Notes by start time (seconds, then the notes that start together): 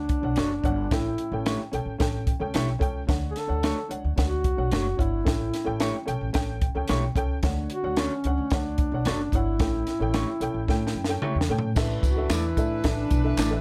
Already playing: D2 D4 C#5 F#5
0.09 kick, closed hi-hat
0.22 B1 D4 C#5 F#5
0.36 F#1 C#4 F#4 A4 C#5, snare, closed hi-hat
0.63 G1 D4 C#5 F#5, kick, closed hi-hat
0.91 A1 A2 C#4 E4 A4 G5, kick, snare, closed hi-hat
1.18 closed hi-hat
1.32 A1 C#4 A4 G5
1.46 A3 E4 G4 C#5, snare, closed hi-hat
1.72 B1 C#4 A4 G5, closed hi-hat
1.86 A1
1.98 A1 C#4 A4 G5, kick, snare, closed hi-hat
2.27 kick, closed hi-hat
2.40 C#2 C#4 A4 G5
2.54 B1 A3 E4 G4 C#5, snare, closed hi-hat
2.79 C#2 C#4 A4 G5, kick, closed hi-hat
3.07 D2 D3 D4 C#5 F#5, kick, snare, closed hi-hat
3.31 G#4
3.36 A4, snare, closed hi-hat
3.47 D2 D4 C#5 F#5
3.63 A3 D4 F#4 C#5, snare, closed hi-hat
3.89 C#2 D4 C#5 F#5, closed hi-hat
4.04 D2
4.16 D2 D4 C#5 F#5, kick, snare, closed hi-hat
4.22 F#4
4.44 kick, closed hi-hat
4.57 B1 D4 C#5 F#5
4.71 F#1 A3 D4 F#4 C#5, snare, closed hi-hat
4.97 G1 D4 C#5 F#5, kick, closed hi-hat
5.01 E4
5.24 A1 A2 C#4 A4 G5, kick, snare, closed hi-hat
5.54 snare, closed hi-hat
5.64 A1 C#4 A4 G5
5.80 A3 E4 G4 C#5, snare, closed hi-hat
6.06 B1 C#4 A4 G5, closed hi-hat
6.21 A1
6.33 A1 C#4 A4 G5, kick, snare, closed hi-hat
6.61 kick, closed hi-hat
6.75 C#2 C#4 A4 G5
6.88 B1 A3 E4 G4 C#5, snare, closed hi-hat
7.15 C#2 C#4 A4 G5, kick, closed hi-hat
7.43 D2 D3 D4 C#5 F#5, kick, snare, closed hi-hat
7.70 F#4, closed hi-hat
7.83 D2 D4 C#5 F#5
7.97 C#4 F#4 A4 C#5, snare, closed hi-hat
8.01 C#4
8.24 C#2 D4 C#5 F#5, closed hi-hat
8.38 D2
8.50 D2 D4 C#5 F#5, kick, snare, closed hi-hat
8.55 D4
8.78 kick, closed hi-hat
8.92 B1 D4 C#5 F#5
9.05 F#1 C#4 F#4 A4 C#5, snare, closed hi-hat
9.32 G1 D4 E4 C#5 F#5, kick, closed hi-hat
9.59 A1 A2 C#4 A4 G5, kick, snare, closed hi-hat
9.87 snare, closed hi-hat
9.99 A1 C#4 A4 G5
10.14 A3 E4 G4 C#5, snare, closed hi-hat
10.40 B1 C#4 A4 G5, closed hi-hat
10.54 A1
10.68 A2 C#4 A4 G5, kick, snare
10.87 snare
10.95 F#2
11.04 C#4 A4, snare
11.10 G5
11.22 A3 E4 G4 C#5, muted upright bass stroke, mid tom
11.35 E2
11.41 snare
11.49 A2 C#4 A4 G5
11.59 floor tom
11.75 A1 A2 E3 D4 A4 B4 E5, kick, snare, crash, tambourine
12.03 C#2 F#4, kick, closed hi-hat, tambourine
12.16 D4 A4 E5
12.30 E2 A3 E4 A4 D5, snare, clap, closed hi-hat, tambourine
12.57 A2 D4 A4 E5, kick, closed hi-hat, tambourine
12.83 A1 D4 A4 E5, kick, snare, closed hi-hat
12.88 D4
13.11 B1, kick, closed hi-hat, tambourine
13.23 D4 A4 E5
13.37 A1 A3 E4 A4 D5, snare, clap, closed hi-hat, tambourine
13.50 D4 A4 E5